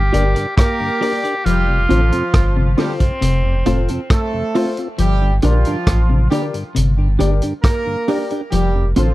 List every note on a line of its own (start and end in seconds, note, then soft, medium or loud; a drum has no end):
0.00 0.11 G1 medium
0.00 0.56 G4 loud
0.13 0.35 G1 medium
0.13 0.32 D3 medium
0.13 0.25 A#3 medium
0.13 0.25 D4 medium
0.13 0.27 G4 medium
0.13 0.35 G4 medium
0.13 0.25 G4 medium
0.13 0.35 A#4 medium
0.13 0.27 A#4 medium
0.13 0.27 D5 medium
0.13 0.36 D5 loud
0.13 closed hi-hat medium
0.35 0.47 G2 medium
0.35 0.47 D3 medium
0.35 0.47 G4 medium
0.35 0.46 A#4 medium
0.35 0.46 D5 medium
0.35 closed hi-hat medium
0.57 1.21 A#3 loud
0.57 1.46 G4 loud
0.57 1.21 A#4 loud
0.57 kick loud
0.57 cross-stick loud
0.57 closed hi-hat medium
0.80 0.90 G2 medium
0.80 0.91 D3 medium
1.01 1.13 A#3 medium
1.01 1.13 D4 medium
1.01 1.15 G4 medium
1.01 1.23 G4 medium
1.01 1.13 G4 medium
1.01 1.15 A#4 medium
1.01 1.24 A#4 medium
1.01 1.16 D5 medium
1.01 1.24 D5 loud
1.01 open hi-hat medium
1.24 1.34 D4 medium
1.24 1.35 G4 medium
1.24 1.35 A#4 medium
1.24 1.34 D5 medium
1.24 closed hi-hat medium
1.45 1.87 F1 medium
1.45 1.64 F3 medium
1.45 1.82 G3 loud
1.45 2.51 F4 loud
1.45 1.82 G4 loud
1.45 closed hi-hat medium
1.69 1.79 F2 medium
1.69 1.79 C3 medium
1.89 2.11 A1 medium
1.89 2.09 D3 medium
1.89 2.75 F3 medium
1.89 2.01 A3 medium
1.89 2.03 C4 medium
1.89 2.01 C4 medium
1.89 2.12 F4 medium
1.89 2.04 F4 medium
1.89 2.75 F4 loud
1.89 2.01 F4 medium
1.89 2.12 A4 medium
1.89 2.04 A4 medium
1.89 2.12 C5 loud
1.89 closed hi-hat medium
2.12 2.23 F2 medium
2.12 2.23 C3 medium
2.12 2.23 C4 medium
2.12 2.23 F4 medium
2.12 2.23 A4 medium
2.12 closed hi-hat soft
2.34 2.75 G1 loud
2.34 kick loud
2.34 cross-stick loud
2.34 closed hi-hat medium
2.57 2.67 F2 medium
2.57 2.74 C3 medium
2.57 2.67 C3 medium
2.77 2.96 D3 medium
2.77 2.92 G3 medium
2.77 2.89 A3 medium
2.77 4.50 C4 medium
2.77 2.89 C4 medium
2.77 2.92 C4 medium
2.77 3.00 F4 medium
2.77 2.89 F4 medium
2.77 2.92 F4 medium
2.77 2.92 G4 medium
2.77 3.00 A4 medium
2.77 2.93 A4 medium
2.77 3.00 C5 loud
2.77 cross-stick medium
2.77 open hi-hat medium
3.00 3.11 F2 medium
3.00 3.11 C3 medium
3.00 kick medium
3.00 closed hi-hat medium
3.21 3.63 F1 loud
3.21 3.40 C3 medium
3.21 closed hi-hat loud
3.45 3.55 F2 medium
3.45 3.55 C3 medium
3.65 3.88 F1 medium
3.65 3.85 A2 medium
3.65 3.77 A3 medium
3.65 3.80 C4 medium
3.65 3.77 C4 medium
3.65 3.88 F4 loud
3.65 3.80 F4 medium
3.65 3.77 F4 medium
3.65 3.88 A4 medium
3.65 3.80 A4 medium
3.65 3.89 C5 loud
3.65 closed hi-hat medium
3.88 4.00 F2 medium
3.88 4.00 C3 medium
3.88 4.00 C4 medium
3.88 4.00 F4 medium
3.88 4.00 A4 medium
3.88 closed hi-hat medium
4.10 4.74 A3 loud
4.10 4.74 A4 loud
4.10 kick loud
4.10 cross-stick loud
4.10 closed hi-hat medium
4.33 4.44 F2 medium
4.33 4.44 C3 medium
4.55 4.66 A3 medium
4.55 4.66 C4 medium
4.55 4.69 C4 medium
4.55 4.76 F4 medium
4.55 4.69 F4 medium
4.55 4.66 F4 medium
4.55 4.77 A4 medium
4.55 4.69 A4 medium
4.55 4.77 C5 loud
4.55 open hi-hat medium
4.77 4.88 C4 medium
4.77 4.88 F4 medium
4.77 closed hi-hat medium
4.98 5.40 G1 loud
4.98 5.17 F3 medium
4.98 5.34 G3 loud
4.98 5.34 G4 loud
4.98 closed hi-hat medium
5.21 5.32 G2 medium
5.21 5.32 D3 medium
5.42 5.64 A#1 medium
5.42 5.61 D3 medium
5.42 6.27 F3 loud
5.42 5.54 A#3 medium
5.42 5.57 D4 medium
5.42 5.54 D4 medium
5.42 6.27 F4 loud
5.42 5.65 G4 medium
5.42 5.54 G4 medium
5.42 5.57 G4 medium
5.42 5.65 A#4 medium
5.42 5.58 A#4 medium
5.42 5.65 D5 loud
5.42 closed hi-hat medium
5.65 5.76 G2 medium
5.65 5.76 D3 medium
5.65 5.77 D4 soft
5.65 5.77 G4 medium
5.65 5.76 A#4 medium
5.65 closed hi-hat medium
5.87 6.28 A1 medium
5.87 kick loud
5.87 cross-stick loud
5.87 closed hi-hat medium
6.10 6.21 G2 medium
6.10 6.27 C3 medium
6.10 6.20 D3 medium
6.30 6.50 D3 medium
6.30 6.44 G3 medium
6.30 6.42 A#3 medium
6.30 6.45 D4 medium
6.30 6.42 D4 medium
6.30 6.44 G4 medium
6.30 6.53 G4 medium
6.30 6.42 G4 medium
6.30 6.46 G4 medium
6.30 6.54 A#4 medium
6.30 6.46 A#4 medium
6.30 6.54 D5 medium
6.30 closed hi-hat medium
6.53 6.64 G2 medium
6.53 6.64 D3 medium
6.53 closed hi-hat medium
6.75 7.17 G1 loud
6.75 6.94 C3 medium
6.75 closed hi-hat loud
6.99 7.09 G2 medium
6.99 7.08 D3 medium
7.19 7.41 G1 medium
7.19 7.38 D3 medium
7.19 7.31 A#3 medium
7.19 7.33 D4 medium
7.19 7.31 D4 medium
7.19 7.41 G4 medium
7.19 7.33 G4 medium
7.19 7.31 G4 medium
7.19 7.41 A#4 medium
7.19 7.34 A#4 medium
7.19 7.42 D5 loud
7.19 closed hi-hat medium
7.42 7.53 G2 medium
7.42 7.53 D3 medium
7.42 7.53 D4 soft
7.42 7.53 G4 medium
7.42 7.52 A#4 medium
7.42 closed hi-hat medium
7.63 8.26 A#3 loud
7.63 8.26 A#4 loud
7.63 kick loud
7.63 cross-stick loud
7.63 closed hi-hat medium
7.87 7.97 G2 medium
7.87 7.97 D3 medium
8.08 8.18 A#3 medium
8.08 8.19 D4 medium
8.08 8.22 D4 medium
8.08 8.30 G4 medium
8.08 8.19 G4 medium
8.08 8.22 G4 medium
8.08 8.30 A#4 medium
8.08 8.22 A#4 medium
8.08 8.30 D5 loud
8.08 open hi-hat medium
8.30 8.41 D4 medium
8.30 8.41 G4 medium
8.30 8.41 A#4 medium
8.30 closed hi-hat medium
8.51 8.93 F1 loud
8.51 8.71 F3 medium
8.51 8.87 G3 loud
8.51 8.87 G4 loud
8.51 closed hi-hat medium
8.75 8.85 F2 medium
8.75 8.85 C3 medium
8.96 9.14 A1 medium
8.96 9.14 D3 medium
8.96 9.14 F3 medium
8.96 9.07 A3 medium
8.96 9.10 C4 medium
8.96 9.07 C4 medium
8.96 9.14 F4 medium
8.96 9.07 F4 medium
8.96 9.10 F4 medium
8.96 9.14 F4 loud
8.96 9.14 A4 medium
8.96 9.11 A4 medium
8.96 9.14 C5 loud
8.96 closed hi-hat medium